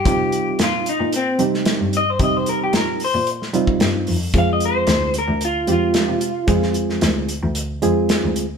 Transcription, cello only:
X:1
M:4/4
L:1/16
Q:1/4=112
K:Cm
V:1 name="Cello" clef=bass
C,2 z C, B,,3 B,,2 z C,3 G,,3 | C,2 z C, B,,3 B,,2 z C,2 G,,2 F,,2 | F,,2 z F,, D,,3 D,,2 z F,,3 C,3 | F,,2 z F,, D,,3 D,,2 z F,,3 D,,3 |]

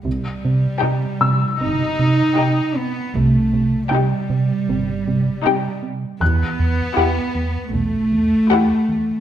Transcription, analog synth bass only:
X:1
M:4/4
L:1/8
Q:1/4=78
K:Clyd
V:1 name="Analog synth bass" clef=bass
C, C, C, C, C, C, C, C, | C, C, C, C, C, C, C, C, | E,, E,, E,, E,, E,, E,, E,, E,, |]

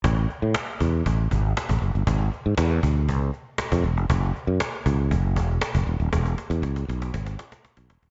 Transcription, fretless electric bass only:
X:1
M:4/4
L:1/16
Q:1/4=118
K:A
V:1 name="Fretless electric bass" clef=bass
A,,,2 z A,, z2 E,,2 A,,,2 G,,,2 z A,,, F,,, =G,,, | G,,,2 z G,, E,,2 D,,2 C,,2 z3 ^E,, =E,,, ^E,,, | F,,,2 z F,, z2 C,,2 F,,,2 E,,,2 z F,,, E,,, ^D,,, | E,,,2 z E,, C,,2 B,,,2 G,,,2 z3 B,,, E,,, ^D,,, |]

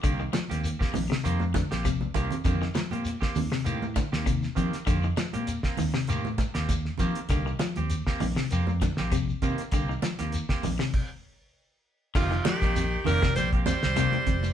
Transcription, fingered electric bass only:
X:1
M:4/4
L:1/16
Q:"Swing 16ths" 1/4=99
K:Cdor
V:1 name="Fingered electric bass" clef=bass
C,,2 z E,,2 z B,,, z F,,3 B,,,3 C,, z | F,,2 z B,,2 z E,, z A,,3 E,,3 F, z | F,,2 z B,,2 z E,, z A,,3 E,,3 F, z | C,,2 z E,,2 z B,,, z F,,3 B,,,3 C, z |
C,,2 z E,,2 z B,,, z8 z | F,,,2 z B,,,3 F,,,2 B,,,3 C,,2 z F,,,2 |]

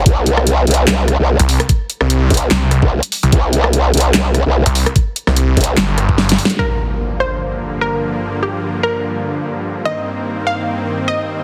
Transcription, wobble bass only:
X:1
M:4/4
L:1/16
Q:"Swing 16ths" 1/4=147
K:Cdor
V:1 name="Wobble bass" clef=bass
C,,6 C,,2 C,,3 C,,2 z3 | z6 C,,2 z3 C,,2 z3 | C,,6 C,,2 C,,3 C,,2 z3 | z6 C,,2 z8 |
z16 | z16 | z16 |]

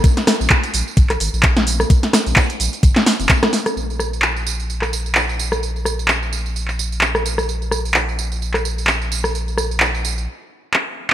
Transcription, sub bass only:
X:1
M:4/4
L:1/16
Q:"Swing 16ths" 1/4=129
K:Abmix
V:1 name="Sub bass" clef=bass
z3 B,,, z2 B,,, z A,,, B,,, A,,, B,,,4 z | z3 B,,, z2 B,,, z A,,, z2 F,,, z4 | B,,,16- | B,,,16- |
B,,,16- | B,,,8 z8 |]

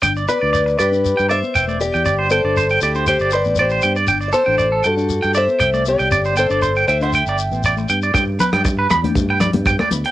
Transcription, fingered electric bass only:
X:1
M:4/4
L:1/16
Q:1/4=118
K:G
V:1 name="Fingered electric bass" clef=bass
G,,,2 z D,,3 G,,3 G,,2 z E,,,3 E,, | G,,,3 G,,,3 D,,3 G,,,2 A,,,3 G,,2 | G,,,2 z A,,,3 G,,3 G,,2 z C,,3 C,, | G,,,3 G,,,3 D,,3 G,,,2 A,,,3 G,,2 |
G,,2 z G,,3 E,,2 G,,3 G,,2 z D,, z |]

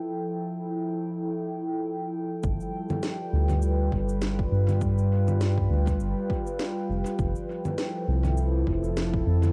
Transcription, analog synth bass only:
X:1
M:4/4
L:1/8
Q:"Swing 16ths" 1/4=101
K:Gmix
V:1 name="Analog synth bass" clef=bass
z8 | G,,, z2 D,,2 G,,,2 G,,- | G,,3 D,, G,,, z2 F,,, | F,,, z2 C,,2 F,,,2 F,, |]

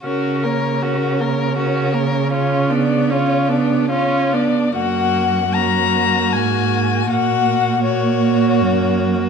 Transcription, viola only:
X:1
M:3/4
L:1/8
Q:1/4=77
K:F#
V:1 name="Viola"
C A, C A, C A, | C B, C B, C B, | A,2 A,4 | A,2 A,4 |]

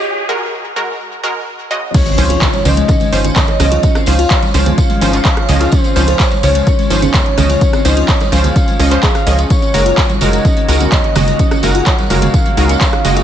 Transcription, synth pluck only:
X:1
M:4/4
L:1/16
Q:1/4=127
K:Db
V:1 name="Synth pluck"
z2 [A,GB] z3 [A,GB]4 [A,GB] z3 [D,A,Ge] z | z2 [F,Dc] z3 [F,Dc]4 [F,Dc] z3 [F,De] z | z2 [F,Dc] z3 [F,Dc]4 [F,Dc] z3 [F,De] z | z2 [F,Dc] z3 [F,Dd]4 [F,Dc] z3 [F,De] z |
z2 [F,Dc] z3 [F,Dc]4 [F,De] [F,Dc] z2 [F,De] z | z2 [A,GB] z3 [A,GB]4 [A,GB] z3 [A,Ge] z | z2 [A,GB] z3 [A,GB]4 [A,GB] z3 [A,Ge] z |]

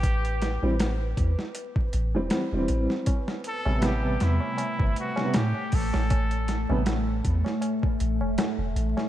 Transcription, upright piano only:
X:1
M:4/4
L:1/16
Q:"Swing 16ths" 1/4=79
K:Am
V:1 name="Upright piano" clef=bass
z3 [E,G,C] z6 z [E,G,C]2 [E,G,C]3 | z3 [C,G,B,]8 [C,G,B,] z4 | z3 [C,G,B,] z12 |]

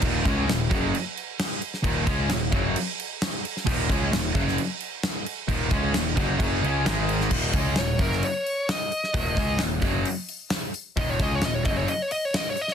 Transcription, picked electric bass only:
X:1
M:4/4
L:1/8
Q:1/4=132
K:Ab
V:1 name="Picked electric bass" clef=bass
E,,, D,, E,,, _G,,, z4 | E,,, D,, E,,, _G,,, z4 | E,,, D,, E,,, _G,,, z4 | E,,, D,, E,,, _G,,, G,,, D,, A,,,2 |
E,,, D,, E,,, _G,,, z4 | E,,, D,, E,,, _G,,, z4 | E,,, D,, E,,, _G,,, z4 |]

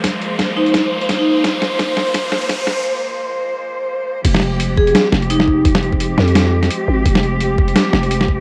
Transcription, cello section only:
X:1
M:4/4
L:1/8
Q:"Swing 16ths" 1/4=171
K:Fm
V:1 name="Cello section"
[F,A,B,c]8- | [F,A,B,c]8- | [F,A,B,c]8 | [F,A,CG]8- |
[F,A,CG]8- | [F,A,CG]8 |]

